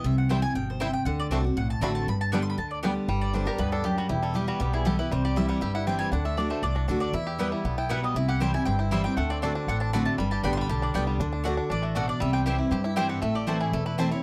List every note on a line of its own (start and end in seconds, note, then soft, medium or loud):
0.04 0.43 C2 medium
0.04 0.53 C3 loud
0.04 0.17 E5 medium
0.18 0.30 F#5 medium
0.29 0.42 E3 medium
0.29 0.42 G3 medium
0.29 0.36 G3 medium
0.29 0.39 C4 medium
0.29 0.43 C4 medium
0.29 0.36 C4 medium
0.29 0.39 E4 loud
0.29 0.36 E4 medium
0.29 0.41 E4 medium
0.29 0.39 C5 medium
0.29 0.39 G5 loud
0.29 0.42 G5 medium
0.42 0.56 C4 medium
0.42 0.54 E4 medium
0.42 0.55 G#5 loud
0.54 0.94 G1 medium
0.54 0.79 B2 medium
0.54 0.68 G5 medium
0.70 0.81 C5 medium
0.80 1.05 C3 medium
0.80 0.86 G3 medium
0.80 0.89 C4 medium
0.80 0.86 C4 medium
0.80 0.89 E4 loud
0.80 0.87 E4 medium
0.80 0.90 C5 loud
0.80 0.93 E5 medium
0.80 0.90 G5 loud
0.93 1.05 G5 medium
1.05 1.25 D2 medium
1.05 1.30 D3 medium
1.05 1.18 F#5 medium
1.20 1.27 D5 loud
1.30 1.52 C2 medium
1.30 1.43 D3 medium
1.30 1.44 A3 medium
1.30 1.37 A3 medium
1.30 1.40 C4 medium
1.30 1.37 C4 medium
1.30 1.44 C4 medium
1.30 1.38 D4 medium
1.30 1.40 F#4 medium
1.30 1.43 F#4 medium
1.30 1.40 D5 loud
1.30 1.41 A5 medium
1.44 1.57 C4 soft
1.44 1.56 F#4 medium
1.56 1.78 B1 medium
1.56 2.05 A2 medium
1.56 1.69 F#5 medium
1.70 1.82 A5 medium
1.81 2.03 A1 medium
1.81 2.06 D3 medium
1.81 2.06 A3 medium
1.81 1.88 A3 medium
1.81 1.91 C4 loud
1.81 1.88 C4 medium
1.81 2.07 C4 medium
1.81 1.88 D4 medium
1.81 1.91 F#4 loud
1.81 2.07 F#4 medium
1.81 1.91 D5 loud
1.81 1.91 A5 medium
1.81 1.95 B5 loud
1.95 2.07 A5 medium
2.07 2.46 G1 medium
2.07 2.56 G2 medium
2.07 2.20 B5 medium
2.21 2.33 A5 medium
2.32 2.57 D3 medium
2.32 2.57 G3 medium
2.32 2.39 G3 medium
2.32 2.41 B3 medium
2.32 2.57 B3 medium
2.32 2.39 B3 medium
2.32 2.39 D4 medium
2.32 2.42 G4 medium
2.32 2.58 G4 loud
2.32 2.42 D5 loud
2.32 2.42 G5 loud
2.32 2.41 B5 medium
2.42 2.49 C6 loud
2.50 2.58 B5 medium
2.57 2.96 D2 medium
2.57 2.82 D3 medium
2.57 2.71 A5 medium
2.71 2.78 D5 medium
2.83 3.07 D3 medium
2.83 2.89 G3 medium
2.83 3.08 G3 medium
2.83 2.92 B3 medium
2.83 2.89 B3 medium
2.83 3.08 B3 medium
2.83 2.90 D4 medium
2.83 2.92 G4 loud
2.83 3.08 G4 medium
2.83 2.93 D5 medium
2.83 2.93 G5 medium
3.08 3.47 G1 medium
3.08 3.57 G2 medium
3.08 3.97 G3 medium
3.21 3.34 D5 medium
3.33 3.46 D3 medium
3.33 3.46 G3 medium
3.33 3.47 B3 loud
3.33 3.70 D4 medium
3.33 3.44 G4 medium
3.33 3.47 C5 medium
3.45 3.59 B3 medium
3.45 3.58 G4 medium
3.45 3.84 G4 medium
3.45 3.59 A#4 medium
3.58 3.98 D2 medium
3.58 3.83 G2 loud
3.58 3.95 B3 medium
3.58 3.72 B4 loud
3.72 4.08 D4 medium
3.72 3.84 A4 medium
3.84 4.08 F#2 medium
3.84 4.35 G4 medium
3.84 3.98 G4 medium
3.98 4.22 G3 medium
3.98 4.09 F#4 medium
4.09 4.48 E1 medium
4.09 4.58 E2 loud
4.09 4.45 E4 medium
4.09 4.22 G4 medium
4.23 4.47 G3 medium
4.23 4.35 A4 medium
4.34 4.59 E3 medium
4.34 4.59 G3 medium
4.34 4.60 B3 medium
4.34 4.60 E4 medium
4.34 4.47 G4 medium
4.34 4.71 G4 medium
4.48 4.84 G3 medium
4.48 4.60 F#4 medium
4.60 4.99 B1 medium
4.60 5.08 B2 loud
4.60 4.96 B3 medium
4.60 4.73 G4 medium
4.73 4.98 E4 medium
4.73 4.86 G#4 medium
4.85 4.98 E3 medium
4.85 4.98 G3 loud
4.85 4.99 B3 medium
4.85 4.98 E4 medium
4.85 5.12 G4 medium
4.85 4.98 A4 medium
4.99 5.12 B3 soft
4.99 5.11 E4 medium
4.99 5.12 E4 medium
4.99 5.11 B4 medium
5.11 5.50 C2 loud
5.11 5.60 C3 loud
5.11 5.47 G3 medium
5.11 5.24 C5 medium
5.25 5.60 G4 medium
5.25 5.37 D5 medium
5.36 5.61 E3 medium
5.36 5.61 G3 medium
5.36 5.61 C4 loud
5.36 5.72 E4 medium
5.36 5.62 E4 medium
5.36 5.48 E5 medium
5.49 5.85 G3 medium
5.49 5.61 F#5 medium
5.61 6.01 G1 medium
5.61 6.10 G2 loud
5.61 5.98 G4 medium
5.61 5.74 E5 medium
5.75 6.10 E4 medium
5.75 5.87 F#5 medium
5.87 6.11 E3 medium
5.87 6.12 G3 medium
5.87 6.13 C4 medium
5.87 6.12 C4 medium
5.87 6.12 E4 loud
5.87 5.98 G5 medium
5.99 6.13 G3 medium
5.99 6.11 G#5 loud
6.12 6.51 D2 medium
6.12 6.36 D3 medium
6.12 6.37 D4 medium
6.12 6.25 F#5 medium
6.25 6.49 A3 medium
6.25 6.38 E5 medium
6.37 6.62 D3 medium
6.37 6.62 A3 medium
6.37 6.62 D4 medium
6.37 6.63 D4 medium
6.37 6.63 F#4 medium
6.37 6.50 D5 medium
6.50 6.86 A3 medium
6.50 6.62 C5 medium
6.62 6.84 C2 medium
6.62 7.12 A2 medium
6.62 6.75 D4 medium
6.62 6.76 D5 medium
6.75 6.87 D4 medium
6.75 6.88 F#4 medium
6.88 7.10 D2 medium
6.88 7.13 D3 medium
6.88 7.13 A3 medium
6.88 7.00 D4 medium
6.88 7.14 D4 medium
6.88 7.14 F#4 loud
6.88 7.00 A4 medium
7.00 7.14 D4 medium
7.00 7.13 D5 loud
7.13 7.52 E2 medium
7.13 7.62 E2 medium
7.13 7.50 E4 medium
7.13 7.50 E5 medium
7.27 7.62 G4 medium
7.39 7.63 E3 medium
7.39 7.64 G3 medium
7.39 7.75 G3 medium
7.39 7.48 B3 medium
7.39 7.64 B3 medium
7.39 7.49 E4 medium
7.39 7.64 E4 medium
7.39 7.49 B4 loud
7.39 7.49 G5 loud
7.52 7.77 E4 medium
7.64 8.03 B1 medium
7.64 7.89 A2 medium
7.64 8.01 B3 medium
7.78 8.13 E4 medium
7.78 7.90 G5 medium
7.89 8.14 B2 medium
7.89 8.16 G3 medium
7.89 7.99 B3 medium
7.89 7.99 E4 loud
7.89 8.00 B4 loud
7.89 8.03 F#5 medium
7.89 8.00 G5 medium
8.03 8.16 B3 medium
8.03 8.16 D#5 medium
8.14 8.54 C2 loud
8.14 8.64 C3 medium
8.14 8.52 E4 medium
8.14 8.28 E5 medium
8.28 8.64 G4 medium
8.28 8.41 F#5 medium
8.40 8.53 E3 medium
8.40 8.77 G3 medium
8.40 8.54 G3 medium
8.40 8.50 C4 medium
8.40 8.54 C4 medium
8.40 8.50 E4 loud
8.40 8.53 E4 medium
8.40 8.50 C5 loud
8.40 8.54 G5 medium
8.40 8.50 G5 medium
8.54 8.67 C4 soft
8.54 8.66 E4 medium
8.54 8.78 E4 medium
8.54 8.65 G#5 loud
8.65 9.05 G1 medium
8.65 9.15 G2 medium
8.65 9.02 C4 medium
8.65 8.78 G5 loud
8.79 9.14 E4 medium
8.79 8.91 C5 medium
8.91 9.04 E3 medium
8.91 9.17 G3 medium
8.91 9.04 G3 medium
8.91 9.01 C4 medium
8.91 9.05 C4 medium
8.91 9.01 E4 medium
8.91 9.03 E4 medium
8.91 9.01 C5 medium
8.91 9.04 E5 medium
8.91 9.01 G5 loud
9.04 9.17 C4 medium
9.04 9.18 C4 soft
9.04 9.16 E4 medium
9.04 9.16 G5 loud
9.17 9.56 D2 medium
9.17 9.42 D3 medium
9.17 9.53 A3 medium
9.17 9.29 F#5 medium
9.30 9.65 C4 medium
9.30 9.37 D5 medium
9.42 9.67 D3 medium
9.42 9.67 A3 medium
9.42 9.51 C4 medium
9.42 9.68 C4 medium
9.42 9.55 D4 medium
9.42 9.52 F#4 medium
9.42 9.68 F#4 medium
9.42 9.52 D5 loud
9.42 9.52 A5 loud
9.55 9.81 D4 medium
9.67 10.06 A1 medium
9.67 10.17 A2 medium
9.67 10.04 C4 medium
9.67 9.80 F#5 medium
9.80 9.93 D4 medium
9.80 9.93 A5 medium
9.93 10.18 D3 medium
9.93 10.18 A3 loud
9.93 10.02 C4 loud
9.93 10.18 C4 medium
9.93 10.44 D4 medium
9.93 10.03 F#4 loud
9.93 10.19 F#4 loud
9.93 10.03 D5 loud
9.93 10.03 A5 loud
9.93 10.05 B5 loud
10.05 10.18 A3 medium
10.05 10.18 A5 loud
10.18 10.38 G1 medium
10.18 10.67 G2 medium
10.18 10.54 G3 medium
10.18 10.31 B5 medium
10.31 10.67 G4 medium
10.31 10.43 A5 medium
10.43 10.65 A1 medium
10.43 10.68 D3 medium
10.43 10.68 G3 medium
10.43 10.53 B3 medium
10.43 10.69 B3 medium
10.43 10.80 D4 medium
10.43 10.53 G4 loud
10.43 10.69 G4 medium
10.43 10.53 D5 loud
10.43 10.53 G5 loud
10.43 10.52 B5 medium
10.53 10.61 C6 loud
10.57 10.92 G3 medium
10.57 10.69 B5 medium
10.69 10.91 B1 medium
10.69 10.94 D3 medium
10.69 11.05 G4 medium
10.69 10.82 A5 medium
10.82 11.17 D4 medium
10.82 10.90 D5 medium
10.94 11.16 C2 medium
10.94 11.19 D3 medium
10.94 11.19 G3 medium
10.94 11.03 B3 medium
10.94 11.20 B3 medium
10.94 11.04 G4 loud
10.94 11.20 G4 medium
10.94 11.04 D5 loud
10.94 11.04 G5 medium
11.07 11.20 G3 medium
11.19 11.58 D2 loud
11.19 11.44 D3 loud
11.19 11.31 D4 medium
11.33 11.44 D4 medium
11.44 11.70 D3 medium
11.44 11.54 A3 loud
11.44 11.70 A3 medium
11.44 11.56 D4 medium
11.44 11.70 D4 medium
11.44 11.54 F#4 loud
11.44 11.70 F#4 medium
11.44 11.54 D5 loud
11.44 11.54 F#5 loud
11.57 11.69 D4 medium
11.70 12.09 A1 medium
11.70 11.95 E3 medium
11.70 11.94 D4 medium
11.70 11.83 D5 loud
11.82 12.18 A3 medium
11.82 11.95 F#4 medium
11.95 12.20 B2 medium
11.95 12.05 A3 medium
11.95 12.07 D4 medium
11.95 12.05 F#4 loud
11.95 12.08 A4 medium
11.95 12.05 D5 loud
11.95 12.05 F#5 loud
12.08 12.21 D4 medium
12.08 12.21 D5 medium
12.20 12.60 C2 loud
12.20 12.70 C3 loud
12.20 12.56 G3 medium
12.20 12.33 E5 medium
12.33 12.69 C4 medium
12.33 12.41 G5 loud
12.46 12.70 E3 medium
12.46 12.71 G3 medium
12.46 12.55 C4 medium
12.46 12.71 C4 loud
12.46 12.56 E4 loud
12.46 12.71 E4 medium
12.46 12.70 G4 medium
12.46 12.56 C5 loud
12.46 12.56 G5 loud
12.59 12.83 E4 medium
12.71 13.10 G2 medium
12.71 13.20 G2 loud
12.71 12.95 G4 medium
12.71 12.84 C5 medium
12.84 13.20 E4 medium
12.84 12.96 E5 medium
12.96 13.21 E3 medium
12.96 13.21 G3 loud
12.96 13.06 C4 medium
12.96 13.22 C4 medium
12.96 13.06 E4 loud
12.96 13.22 E4 loud
12.96 13.22 G4 medium
12.96 13.06 C5 loud
12.96 13.09 G5 loud
12.96 13.06 G5 loud
13.09 13.22 C4 medium
13.09 13.21 F#5 medium
13.22 13.61 A1 medium
13.22 13.71 A2 loud
13.22 13.48 A3 medium
13.22 13.35 E5 medium
13.35 13.71 G4 medium
13.35 13.48 D5 medium
13.47 13.72 E3 medium
13.47 13.72 A3 medium
13.47 13.73 A3 medium
13.47 13.56 C4 medium
13.47 13.72 C4 medium
13.47 13.57 E4 loud
13.47 13.73 E4 medium
13.47 13.60 B4 medium
13.47 13.57 C5 loud
13.47 13.57 A5 loud
13.60 13.85 E4 medium
13.60 13.73 G#4 medium
13.73 14.12 E1 medium
13.73 14.21 E2 medium
13.73 14.23 A3 medium
13.73 13.85 A4 medium
13.86 14.10 E4 medium
13.86 13.98 B4 medium
13.98 14.11 E3 medium
13.98 14.12 A3 loud
13.98 14.07 C4 medium
13.98 14.23 C4 medium
13.98 14.12 C4 loud
13.98 14.08 E4 loud
13.98 14.10 E4 loud
13.98 14.11 C5 medium
13.98 14.08 C5 loud
13.98 14.08 A5 loud
14.11 14.23 C4 soft
14.11 14.23 E4 medium
14.11 14.23 C#5 medium